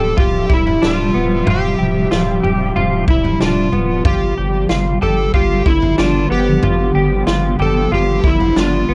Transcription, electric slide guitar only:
0.00 0.20 A4 medium
0.20 0.52 G4 loud
0.54 0.82 E4 medium
0.86 1.50 F4 medium
1.50 3.10 G4 loud
3.10 3.42 E4 medium
3.43 4.06 F4 medium
4.07 4.66 G4 medium
5.03 5.32 A4 medium
5.35 5.68 G4 loud
5.67 5.99 E4 medium
5.99 6.31 F4 medium
6.32 7.24 G4 medium
7.62 7.94 A4 medium
7.94 8.26 G4 loud
8.27 8.59 E4 medium
8.60 8.94 F4 medium

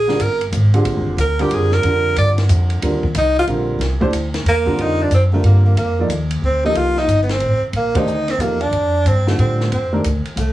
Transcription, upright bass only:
0.00 0.18 A#1 medium
0.20 0.51 G1 medium
0.52 0.84 G#1 medium
0.85 0.96 A#1 medium
0.96 1.06 G#1 medium
1.06 1.16 F1 medium
1.17 1.49 D2 medium
1.50 1.82 F#2 medium
1.83 2.15 F2 medium
2.16 2.48 G2 medium
2.49 2.81 F2 medium
2.82 3.13 D#2 medium
3.15 3.46 C2 medium
3.47 3.78 A#1 medium
3.79 4.10 C2 medium
4.10 4.43 D2 medium
4.44 4.77 E2 medium
4.77 5.10 F2 medium
5.10 5.43 F#2 medium
5.43 5.74 G2 medium
5.75 6.08 F2 medium
6.09 6.41 D#2 medium
6.42 6.73 D2 medium
6.74 7.06 C2 medium
7.07 7.40 G1 medium
7.41 7.61 A1 medium
7.61 muted upright bass stroke soft
7.73 8.04 A#1 medium
8.04 8.37 D2 medium
8.38 8.70 E2 medium
8.71 9.04 F2 medium
9.05 9.37 G2 medium
9.38 9.70 A2 medium
9.71 10.03 F2 medium
10.04 10.24 D2 medium
10.36 10.53 C2 medium

